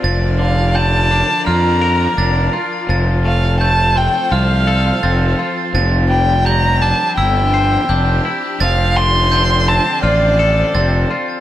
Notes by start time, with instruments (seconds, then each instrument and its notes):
Already playing: clean electric guitar F4
0.04 fingered electric bass F1, clean electric guitar F3, string section F3 F4 A#4 D5, glockenspiel A6
0.39 clean electric guitar D3, violin F5
0.75 clean electric guitar D3, violin A5, glockenspiel G6
1.11 clean electric guitar D4
1.47 fingered electric bass F2, clean electric guitar F4, violin A#5, glockenspiel F6
1.81 clean electric guitar A#4
2.17 fingered electric bass F1, clean electric guitar D4, glockenspiel A6
2.53 clean electric guitar F4
2.89 fingered electric bass F1, clean electric guitar F3, string section A4 C5, glockenspiel A6
3.25 clean electric guitar A3, violin F5
3.61 clean electric guitar A3, violin A5, glockenspiel G6
3.96 clean electric guitar C4, violin G5
4.31 fingered electric bass C2, clean electric guitar F4, violin F5, glockenspiel F6
4.67 clean electric guitar A4
5.03 fingered electric bass F1, clean electric guitar C4, glockenspiel A6
5.39 clean electric guitar F4
5.74 fingered electric bass F1, clean electric guitar F3, string section C4 D4 G4, glockenspiel A6
6.10 clean electric guitar G3, violin G5
6.46 clean electric guitar G3, violin A#5, glockenspiel G6
6.81 clean electric guitar D4, violin A5
7.17 fingered electric bass G1, clean electric guitar E4, violin G5, glockenspiel E6
7.54 clean electric guitar C5
7.89 fingered electric bass F1, clean electric guitar D4, glockenspiel G6
8.25 clean electric guitar E4
8.60 fingered electric bass F1, clean electric guitar F3, string section D4 C5, violin F5, glockenspiel A6
8.96 clean electric guitar D3, violin C6
9.32 clean electric guitar D3, glockenspiel G6
9.68 clean electric guitar C4, violin A5
10.03 fingered electric bass A1, clean electric guitar F4, violin D5, glockenspiel F6
10.39 clean electric guitar A4
10.75 fingered electric bass F1, clean electric guitar C4, glockenspiel A6
11.10 clean electric guitar F4